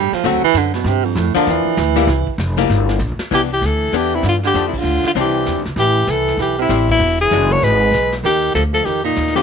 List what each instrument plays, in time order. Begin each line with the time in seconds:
Already playing: upright bass G2, baritone saxophone G3
0.12 baritone saxophone F3, muted upright bass stroke, snare
0.24 upright bass D2, hollow-body jazz guitar D3 A3 C4 F#4, baritone saxophone F#3, brush sweep, snare
0.43 baritone saxophone E3, muted upright bass stroke
0.54 upright bass F#2, baritone saxophone D3, snare, hi-hat pedal
0.74 baritone saxophone B2, snare
0.84 upright bass G2, baritone saxophone C3, brush sweep, snare
1.05 baritone saxophone F2
1.15 upright bass F2, baritone saxophone A2, snare, hi-hat pedal
1.35 baritone saxophone D3, hollow-body jazz guitar F3 A#3 D4, muted upright bass stroke, snare
1.47 upright bass E2, baritone saxophone E3, brush sweep, snare
1.65 muted upright bass stroke
1.77 upright bass D2, snare, hi-hat pedal
1.96 hollow-body jazz guitar G3 A#3 E4, snare
2.07 upright bass C2, brush sweep, snare
2.27 muted upright bass stroke, kick
2.38 upright bass F1, snare, hi-hat pedal
2.58 hollow-body jazz guitar G3 A#3 E4, snare
2.70 upright bass G1, brush sweep, snare
2.89 snare
2.99 upright bass A#1, hi-hat pedal
3.17 muted upright bass stroke, snare
3.31 upright bass C2, hollow-body jazz guitar E3 B3 D4, baritone saxophone E3, alto saxophone G4, brush sweep, kick, snare, crash
3.53 baritone saxophone E3, alto saxophone G4
3.62 upright bass D2, baritone saxophone E3, snare, hi-hat pedal
3.66 alto saxophone A4
3.92 upright bass E2, hollow-body jazz guitar E3 B3 D4, baritone saxophone E3, brush sweep, snare
3.97 alto saxophone G4
4.15 baritone saxophone C3, alto saxophone E4
4.23 upright bass G2, baritone saxophone D3, snare, hi-hat pedal
4.29 alto saxophone F4
4.43 baritone saxophone D3, alto saxophone G4, snare
4.54 upright bass F2, hollow-body jazz guitar F3 A3 D4, brush sweep, snare
4.67 baritone saxophone C3, alto saxophone E4
4.74 kick, crash
4.78 baritone saxophone D3, alto saxophone F4
4.83 upright bass D2, hi-hat pedal
5.04 baritone saxophone D3, alto saxophone F4, snare
5.15 upright bass C2, hollow-body jazz guitar E3 C4 D4, baritone saxophone E3, brush sweep, snare
5.20 alto saxophone G4
5.46 upright bass E2, snare, hi-hat pedal
5.57 upright bass D2
5.65 upright bass C2, snare
5.76 upright bass A1, baritone saxophone E3, alto saxophone G4, brush sweep, snare
6.07 upright bass C2, baritone saxophone E3, alto saxophone A4, snare, hi-hat pedal
6.28 snare
6.37 upright bass B1, baritone saxophone E3, brush sweep, snare
6.42 alto saxophone G4
6.58 baritone saxophone C3, alto saxophone E4
6.69 upright bass A1, hollow-body jazz guitar G3 C4 E4, snare, hi-hat pedal
6.89 baritone saxophone B2, alto saxophone E4, kick, crash
7.00 upright bass E1, brush sweep
7.21 baritone saxophone E3, alto saxophone G#4
7.31 upright bass F#1, hollow-body jazz guitar E3 G#3 D4 F#4, snare, hi-hat pedal
7.51 baritone saxophone A#3, alto saxophone C#5
7.62 upright bass G#1, baritone saxophone G#3, alto saxophone B4, brush sweep, snare
7.92 upright bass B1, snare, hi-hat pedal
8.12 snare
8.23 upright bass D#2, baritone saxophone D#3, alto saxophone G4, brush sweep, snare
8.54 upright bass D2, baritone saxophone F3, alto saxophone A4, snare, hi-hat pedal
8.73 baritone saxophone F3, alto saxophone A4, snare
8.84 upright bass F2, baritone saxophone D#3, alto saxophone G4, brush sweep, snare
9.04 baritone saxophone A#2, alto saxophone D#4
9.16 upright bass D#2, snare, hi-hat pedal
9.27 snare
9.35 baritone saxophone D3, hollow-body jazz guitar D3 A3 C4 F4, alto saxophone G4, snare